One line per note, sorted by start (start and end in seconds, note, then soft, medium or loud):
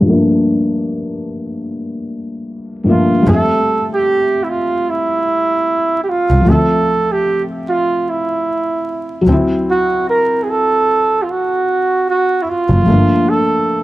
0.00 2.80 G2 medium
0.00 2.81 F3 medium
0.06 2.83 A3 medium
0.06 2.84 A#3 medium
0.12 2.85 D4 medium
2.84 3.25 G2 medium
2.84 3.26 F3 soft
2.84 3.24 A3 soft
2.88 3.28 A#3 soft
2.88 3.28 D4 medium
2.88 3.26 F4 medium
3.22 6.40 G3 medium
3.22 6.42 A3 medium
3.27 3.35 F2 loud
3.27 6.44 C4 medium
3.27 3.87 A4 loud
3.33 6.46 E5 medium
3.93 4.45 G4 loud
4.43 4.51 E4 medium
4.50 4.91 F4 medium
4.90 6.02 E4 medium
6.03 6.11 G4 medium
6.09 6.51 F4 medium
6.30 6.38 C2 medium
6.41 9.20 F3 medium
6.41 9.22 A3 medium
6.47 6.55 D2 loud
6.47 9.24 C4 medium
6.47 7.13 A4 loud
6.52 9.26 E5 medium
7.12 7.43 G4 medium
7.69 8.11 F4 medium
8.09 9.28 E4 medium
9.21 12.40 F#3 medium
9.27 9.35 D2 medium
9.27 12.44 C4 medium
9.32 12.45 E4 medium
9.70 10.06 F#4 loud
10.09 10.44 A#4 loud
10.43 10.51 G#4 medium
10.50 11.24 A4 loud
11.22 11.31 F4 medium
11.30 12.08 F#4 loud
12.09 12.44 F#4 loud
12.42 12.51 E4 medium
12.49 13.31 F4 loud
12.70 12.78 F#1 medium
12.81 13.83 F3 medium
12.81 13.83 A3 medium
12.87 12.95 G1 loud
12.87 13.83 A#3 medium
12.92 13.83 D4 medium
13.29 13.83 A4 loud